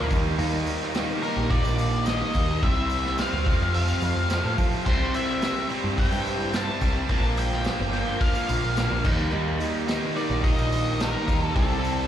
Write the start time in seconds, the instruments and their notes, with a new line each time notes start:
Already playing: overdriven electric guitar A#3, steel-string acoustic guitar A#3 D4 A#4
0.00 steel-string acoustic guitar F3
0.10 picked electric bass D#2, overdriven electric guitar D#3, tonewheel organ G3 A#3 D#4 A#4, steel-string acoustic guitar G3 A#3 D#4 G4, kick, open hi-hat, tambourine
0.25 steel-string acoustic guitar A#3 D#4 G4, tambourine
0.38 picked electric bass D#2, steel-string acoustic guitar D#3 G3 A#3 D#4 G4, open hi-hat
0.53 tambourine
0.66 steel-string acoustic guitar G3 A#3 D#4 G4, open hi-hat, tambourine
0.82 snare
0.94 steel-string acoustic guitar D#3 G3 A#3 D#4 G4, snare, open hi-hat, tambourine
1.09 tambourine
1.22 overdriven electric guitar D#3, steel-string acoustic guitar G3 A#3 D#4 G4, lead electric guitar A#4, open hi-hat
1.36 picked electric bass A#1, steel-string acoustic guitar A#3 D#4 G4, tambourine
1.50 overdriven electric guitar D#3 G3 A#3 D#4, lead electric guitar D5, kick, open hi-hat, tambourine
1.65 picked electric bass A#1, tambourine
1.78 steel-string acoustic guitar G3 A#3 D#4 G4, open hi-hat, tambourine
1.92 tambourine
2.06 steel-string acoustic guitar D#3 G3 A#3 D#4 G4, lead electric guitar D#5, snare, open hi-hat, tambourine
2.20 steel-string acoustic guitar A#3 D#4 G4
2.34 picked electric bass D#2, overdriven electric guitar D#3, steel-string acoustic guitar G3 A#3 D#4 G4, kick, open hi-hat, tambourine
2.48 steel-string acoustic guitar A#3 D#4 G4, tambourine
2.62 picked electric bass C2, steel-string acoustic guitar C3 G3 C4 E4 G4, tonewheel organ G3 C4 E4 C5, lead electric guitar E5, kick, open hi-hat, tambourine
2.76 tambourine
2.90 steel-string acoustic guitar G3 C4 E4 G4, open hi-hat, tambourine
3.04 snare, tambourine
3.18 steel-string acoustic guitar C3 G3 C4 E4 G4, lead electric guitar F5, snare, open hi-hat, tambourine
3.33 picked electric bass D2
3.46 picked electric bass F2, overdriven electric guitar F2 C3 A3, steel-string acoustic guitar F3 C4 F4 A4, tonewheel organ A3 C4 F4 C5, kick, open hi-hat, tambourine
3.60 steel-string acoustic guitar C4 F4 A4, tambourine
3.73 overdriven electric guitar F2 C3 F3 A3 C4 F4, lead electric guitar F5, open hi-hat, tambourine
3.88 tambourine
4.02 picked electric bass F2, steel-string acoustic guitar F3 C4 F4 A4, open hi-hat, tambourine
4.17 picked electric bass F2, tambourine
4.30 overdriven electric guitar F2 C3 A3, steel-string acoustic guitar F3 C4 F4 A4, snare, open hi-hat, tambourine
4.44 picked electric bass A2, steel-string acoustic guitar C4 F4 A4, tambourine
4.58 overdriven electric guitar F2 C3 A3, steel-string acoustic guitar F3 C4 F4 A4, picked electric bass F3, kick, open hi-hat, tambourine
4.72 steel-string acoustic guitar C4 F4 A4, tambourine
4.86 picked electric bass C2, steel-string acoustic guitar C3 G3 C4 E4 C5, tonewheel organ G3 C4 E4 C5, lead electric guitar C5, kick, crash
5.01 tambourine
5.14 steel-string acoustic guitar G3 C4 E4 C5, lead electric guitar E5, open hi-hat, tambourine
5.41 steel-string acoustic guitar C3 G3 C4 E4 C5, snare, open hi-hat, tambourine
5.68 overdriven electric guitar C3, steel-string acoustic guitar G3 C4 E4 C5, open hi-hat
5.83 picked electric bass G2, steel-string acoustic guitar C4 E4 C5, tambourine
5.98 overdriven electric guitar C3 G3 C4 E4, lead electric guitar G5, kick, open hi-hat, tambourine
6.12 picked electric bass G2, tambourine
6.25 steel-string acoustic guitar G3 C4 E4 C5, open hi-hat, tambourine
6.40 tambourine
6.52 steel-string acoustic guitar C3 G3 C4 E4 C5, snare, open hi-hat, tambourine
6.56 lead electric guitar A5
6.67 steel-string acoustic guitar C4 E4 C5
6.80 picked electric bass C2, overdriven electric guitar C3, steel-string acoustic guitar G3 C4 E4 C5, kick, open hi-hat, tambourine
6.94 steel-string acoustic guitar C4 E4 C5, tambourine
7.08 picked electric bass A#1, steel-string acoustic guitar A#2 D3 F3 A#3 D4 A#4, tonewheel organ F3 A#3 D4 A#4, lead electric guitar A5, kick, open hi-hat
7.23 tambourine
7.35 steel-string acoustic guitar F3 A#3 D4 A#4, lead electric guitar G5, open hi-hat, tambourine
7.52 snare
7.63 steel-string acoustic guitar A#2 D3 F3 A#3 D4 A#4, snare, open hi-hat, tambourine
7.79 picked electric bass G1, tambourine
7.92 overdriven electric guitar A#2 D3, steel-string acoustic guitar F3 A#3 D4 A#4, open hi-hat
8.06 steel-string acoustic guitar F3 A#3 D4 A#4, tambourine
8.20 overdriven electric guitar A#2 D3 F3 A#3 D4, lead electric guitar F5, kick, open hi-hat, tambourine
8.35 tambourine
8.48 picked electric bass A#1, steel-string acoustic guitar F3 A#3 D4 A#4, open hi-hat, tambourine
8.63 picked electric bass A#1, tambourine
8.76 steel-string acoustic guitar A#2 D3 F3 A#3 D4 A#4, snare, open hi-hat, tambourine
8.89 picked electric bass A#1, steel-string acoustic guitar F3 A#3 D4 A#4
9.03 picked electric bass D#2, overdriven electric guitar D#3, steel-string acoustic guitar G3 A#3 D#4 G4, tonewheel organ G3 A#3 D#4 A#4, kick, tambourine, crash
9.16 steel-string acoustic guitar A#3 D#4 G4, tambourine
9.31 picked electric bass D#2, steel-string acoustic guitar D#3 G3 A#3 D#4 G4
9.47 tambourine
9.58 steel-string acoustic guitar G3 A#3 D#4 G4, open hi-hat, tambourine
9.87 steel-string acoustic guitar D#3 G3 A#3 D#4 G4, snare, open hi-hat, tambourine
10.03 tambourine
10.14 overdriven electric guitar D#3, steel-string acoustic guitar G3 A#3 D#4 G4, lead electric guitar D5, open hi-hat
10.28 picked electric bass A#1, steel-string acoustic guitar A#3 D#4 G4, tambourine
10.43 overdriven electric guitar D#3 G3 A#3 D#4, lead electric guitar D#5, kick, open hi-hat, tambourine
10.57 picked electric bass A#1, tambourine
10.71 steel-string acoustic guitar G3 A#3 D#4 G4, open hi-hat, tambourine
10.87 tambourine
11.00 steel-string acoustic guitar D#3 G3 A#3 D#4 G4, lead electric guitar A#4, snare, open hi-hat, tambourine
11.13 steel-string acoustic guitar A#3 D#4 G4
11.28 picked electric bass D#2, overdriven electric guitar D#3, steel-string acoustic guitar G3 A#3 D#4 G4, kick, open hi-hat, tambourine
11.41 steel-string acoustic guitar A#3 D#4 G4, lead electric guitar A4, tambourine
11.55 picked electric bass C2, steel-string acoustic guitar C3 G3 C4 E4 G4, tonewheel organ G3 C4 E4 C5, lead electric guitar A4, kick, open hi-hat, tambourine
11.70 tambourine
11.84 steel-string acoustic guitar G3 C4 E4 G4, open hi-hat, tambourine
12.00 tambourine